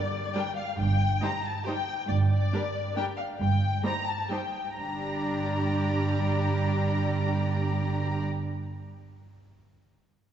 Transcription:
0.00 0.33 D5 medium
0.34 0.43 G3 soft
0.34 0.43 D4 soft
0.34 0.43 A#4 soft
0.34 0.42 D5 soft
0.34 0.56 G5 medium
0.56 0.77 F5 medium
0.78 1.13 G1 soft
0.78 1.13 G2 soft
0.78 1.22 G5 medium
1.22 1.30 G3 soft
1.22 1.31 D#4 soft
1.22 1.30 G4 soft
1.22 1.30 C5 soft
1.22 1.44 A#5 medium
1.45 1.66 A5 medium
1.65 1.75 G3 soft
1.65 1.74 D#4 soft
1.65 1.73 G4 soft
1.65 1.73 C5 soft
1.65 2.08 G5 medium
2.09 2.43 G1 soft
2.09 2.43 G2 medium
2.09 2.17 D5 medium
2.30 2.94 D5 medium
2.52 2.61 G3 soft
2.52 2.60 D4 soft
2.52 2.61 G4 soft
2.52 2.62 A#4 soft
2.96 3.04 G3 soft
2.96 3.04 D4 soft
2.96 3.05 G4 soft
2.96 3.05 A#4 soft
2.96 3.04 G5 medium
3.17 3.25 F5 medium
3.40 3.75 G1 soft
3.40 3.75 G2 soft
3.40 3.83 G5 medium
3.84 3.92 G3 soft
3.84 3.92 D#4 soft
3.84 3.94 G4 soft
3.84 3.93 C5 soft
3.84 4.07 A#5 medium
4.07 4.31 A5 medium
4.30 4.39 G3 soft
4.30 4.39 D#4 soft
4.30 4.39 G4 soft
4.30 4.40 C5 soft
4.30 4.79 G5 soft
4.78 8.20 G1 soft
4.78 8.21 G2 soft
4.78 8.20 G3 soft
4.78 8.20 D4 soft
4.78 8.21 G4 soft
4.78 8.21 D5 soft
4.78 8.19 A#5 soft

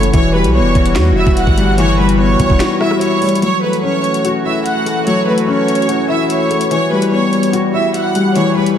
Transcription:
0.00 0.11 F#1 loud
0.00 0.10 E3 medium
0.00 0.15 F#3 medium
0.00 0.10 A3 medium
0.00 0.15 A3 medium
0.00 0.15 C#4 loud
0.00 0.14 E4 medium
0.00 0.13 F#4 medium
0.00 0.11 C#5 medium
0.00 0.11 C#6 medium
0.00 closed hi-hat medium
0.13 0.46 E1 loud
0.13 1.16 E3 medium
0.13 3.39 E3 medium
0.13 3.39 G3 medium
0.13 3.39 F#4 loud
0.13 0.31 C#5 loud
0.13 0.31 C#6 medium
0.13 kick loud
0.13 closed hi-hat medium
0.34 1.37 G3 medium
0.34 0.51 B4 medium
0.34 0.52 B5 medium
0.44 0.61 B1 loud
0.44 closed hi-hat medium
0.54 1.57 B3 medium
0.54 0.93 C#5 medium
0.54 0.94 C#6 medium
0.60 0.74 E1 loud
0.75 0.97 E1 loud
0.75 kick medium
0.75 closed hi-hat soft
0.86 closed hi-hat medium
0.95 1.13 E2 loud
0.95 1.98 F#4 loud
0.95 finger snap loud
0.95 snare loud
0.95 closed hi-hat medium
1.11 1.26 E1 loud
1.16 2.19 E4 medium
1.16 1.34 E5 medium
1.16 1.34 E6 medium
1.27 1.46 E1 loud
1.27 kick loud
1.37 1.76 F#5 medium
1.37 1.76 F#6 medium
1.37 closed hi-hat medium
1.47 2.36 G1 loud
1.47 kick loud
1.57 1.97 G3 medium
1.57 closed hi-hat medium
1.78 2.81 E3 loud
1.78 1.95 C#5 loud
1.78 1.96 C#6 medium
1.78 closed hi-hat medium
1.99 3.01 G3 medium
1.99 2.16 B4 medium
1.99 2.16 B5 medium
2.09 closed hi-hat medium
2.19 3.22 B3 medium
2.19 2.77 C#5 medium
2.19 2.77 C#6 medium
2.40 2.49 B1 loud
2.40 kick medium
2.40 closed hi-hat medium
2.50 2.60 E1 loud
2.50 kick medium
2.60 3.42 F#4 loud
2.60 finger snap loud
2.60 snare loud
2.60 closed hi-hat medium
2.81 3.42 E4 loud
2.81 2.98 E5 medium
2.81 2.98 E6 medium
2.81 cross-stick medium
2.91 cross-stick medium
3.01 3.40 C#5 medium
3.01 3.40 C#6 medium
3.01 closed hi-hat medium
3.22 3.42 G3 medium
3.22 closed hi-hat soft
3.22 open hi-hat medium
3.29 closed hi-hat medium
3.35 closed hi-hat medium
3.42 8.78 E3 medium
3.42 4.45 F#3 medium
3.42 6.68 A3 medium
3.42 8.78 F#4 medium
3.42 3.60 C#5 loud
3.42 3.60 C#6 medium
3.42 closed hi-hat medium
3.62 4.66 A3 medium
3.62 3.80 B4 medium
3.62 3.80 B5 medium
3.73 closed hi-hat medium
3.83 4.86 C#4 medium
3.83 4.22 C#5 medium
3.83 4.23 C#6 medium
4.04 closed hi-hat soft
4.14 closed hi-hat medium
4.25 5.27 F#4 loud
4.25 closed hi-hat medium
4.45 5.48 E4 medium
4.45 4.62 E5 medium
4.45 4.63 E6 medium
4.66 5.04 F#5 medium
4.66 5.05 F#6 medium
4.66 closed hi-hat medium
4.86 5.26 A3 medium
4.86 closed hi-hat medium
5.07 6.10 F#3 medium
5.07 5.24 C#5 loud
5.07 5.24 C#6 medium
5.07 closed hi-hat medium
5.27 6.30 A3 medium
5.27 5.44 B4 medium
5.27 5.45 B5 medium
5.38 closed hi-hat medium
5.48 6.51 C#4 medium
5.48 6.06 C#5 medium
5.48 6.06 C#6 medium
5.68 closed hi-hat medium
5.75 closed hi-hat medium
5.82 closed hi-hat soft
5.88 6.71 F#4 medium
5.88 closed hi-hat medium
6.09 6.71 E4 medium
6.09 6.26 E5 medium
6.09 6.27 E6 medium
6.30 6.69 C#5 medium
6.30 6.69 C#6 medium
6.30 closed hi-hat medium
6.50 6.71 A3 medium
6.50 closed hi-hat medium
6.61 closed hi-hat medium
6.71 7.74 E3 medium
6.71 8.78 G3 medium
6.71 6.88 C#5 medium
6.71 6.89 C#6 medium
6.71 closed hi-hat medium
6.92 7.94 G3 medium
6.92 7.09 B4 medium
6.92 7.09 B5 medium
7.02 closed hi-hat medium
7.12 8.15 B3 medium
7.12 7.51 C#5 medium
7.12 7.51 C#6 medium
7.33 closed hi-hat soft
7.43 closed hi-hat medium
7.53 8.56 F#4 medium
7.53 closed hi-hat medium
7.73 8.76 E4 medium
7.73 7.91 E5 medium
7.73 7.92 E6 medium
7.94 8.33 F#5 medium
7.94 8.34 F#6 medium
7.94 closed hi-hat medium
8.15 8.55 G3 medium
8.15 closed hi-hat medium
8.36 8.78 E3 medium
8.36 8.53 C#5 loud
8.36 8.53 C#6 medium
8.36 closed hi-hat medium
8.56 8.78 G3 medium
8.56 8.73 B4 medium
8.56 8.74 B5 medium
8.66 closed hi-hat medium

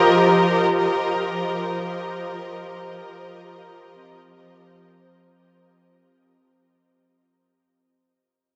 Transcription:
0.00 4.85 F3 medium
0.00 4.97 F3 medium
0.00 4.87 F4 medium
0.00 4.86 G4 medium
0.00 4.86 A#4 medium
0.00 4.96 C5 medium
0.00 4.87 D#5 medium
3.96 6.78 C4 medium

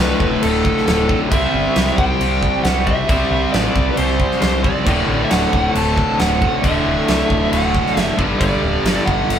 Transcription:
0.00 0.12 C2 loud
0.00 1.07 D2 medium
0.00 1.08 A2 medium
0.00 1.07 D3 medium
0.00 1.28 D4 medium
0.00 1.28 A4 medium
0.00 0.43 B4 medium
0.00 1.27 E5 medium
0.10 snare soft
0.20 0.34 D1 loud
0.20 kick medium
0.42 0.70 D1 loud
0.42 0.85 A4 medium
0.42 crash medium
0.65 kick medium
0.77 snare soft
0.86 1.15 D1 medium
0.86 1.18 A4 medium
0.86 snare loud
0.86 crash medium
1.08 1.31 D2 medium
1.08 1.31 A2 medium
1.08 1.30 D3 medium
1.08 kick medium
1.31 1.45 C2 medium
1.31 2.85 C3 medium
1.31 2.86 G3 medium
1.31 4.83 C4 medium
1.31 2.84 C4 loud
1.31 4.83 G4 medium
1.31 4.83 D5 loud
1.31 1.97 E5 loud
1.31 kick loud
1.31 crash medium
1.54 1.67 G1 medium
1.76 1.90 C2 loud
1.76 snare loud
1.76 crash medium
1.88 snare soft
1.97 2.12 C2 medium
1.97 2.63 G5 loud
1.97 kick loud
2.20 2.47 C2 medium
2.20 crash medium
2.43 kick medium
2.63 2.92 C2 medium
2.63 2.86 F#5 loud
2.63 snare loud
2.63 crash medium
2.86 3.06 C3 medium
2.86 3.08 G3 medium
2.86 3.07 C4 medium
2.86 3.49 E5 loud
2.86 kick loud
3.08 3.23 C2 medium
3.08 4.62 C3 medium
3.08 4.63 G3 loud
3.08 4.62 C4 loud
3.08 kick loud
3.08 crash medium
3.31 3.45 C2 loud
3.52 3.67 A1 medium
3.52 3.88 D5 medium
3.52 snare loud
3.52 crash medium
3.76 3.89 C2 medium
3.76 kick medium
3.91 3.97 B4 medium
3.97 4.25 C2 medium
3.97 4.40 C5 loud
3.97 crash medium
4.20 kick medium
4.32 snare soft
4.41 4.70 C2 medium
4.41 4.62 C5 loud
4.41 snare loud
4.41 crash medium
4.64 4.86 C3 medium
4.64 4.86 G3 medium
4.64 4.85 C4 medium
4.64 5.25 D5 loud
4.64 kick medium
4.86 5.00 D1 medium
4.86 6.40 D2 medium
4.86 6.41 A2 medium
4.86 8.15 D4 medium
4.86 9.39 A4 medium
4.86 8.15 E5 loud
4.86 kick loud
4.86 crash medium
4.90 6.39 D3 loud
5.08 5.22 A1 loud
5.24 5.31 E5 medium
5.31 5.45 D1 medium
5.31 5.72 F#5 loud
5.31 snare loud
5.31 crash medium
5.43 snare soft
5.53 5.67 D1 medium
5.53 kick medium
5.75 6.03 D1 loud
5.75 6.21 A5 loud
5.75 crash medium
5.97 kick medium
6.19 6.47 D1 medium
6.19 6.63 F#5 loud
6.19 snare loud
6.19 crash soft
6.41 6.61 D2 medium
6.41 6.63 A2 medium
6.41 6.62 D3 medium
6.41 kick medium
6.63 6.78 D1 medium
6.63 8.17 D2 medium
6.63 8.18 A2 medium
6.63 8.19 D3 loud
6.63 7.52 E5 loud
6.63 kick loud
6.63 crash medium
6.86 7.00 D1 medium
7.08 7.22 C2 medium
7.08 snare loud
7.08 crash medium
7.20 snare soft
7.30 7.44 D1 medium
7.30 kick medium
7.52 7.79 D1 medium
7.52 8.00 F#5 loud
7.52 crash medium
7.75 kick medium
7.86 snare soft
7.97 8.10 F#1 medium
7.97 8.15 E5 loud
7.97 snare loud
7.97 crash medium
8.17 8.32 G1 medium
8.17 9.39 G2 medium
8.17 9.39 D3 medium
8.17 9.39 G3 medium
8.17 9.39 D4 medium
8.17 kick medium
8.21 9.39 G3 loud
8.39 8.55 G1 medium
8.39 9.09 D5 loud
8.39 kick loud
8.39 crash medium
8.63 8.77 D1 medium
8.84 8.98 G1 medium
8.84 snare loud
8.84 crash medium
8.97 snare soft
9.06 9.21 G1 medium
9.06 9.39 F#5 loud
9.06 kick medium
9.29 9.39 G1 loud
9.29 crash medium

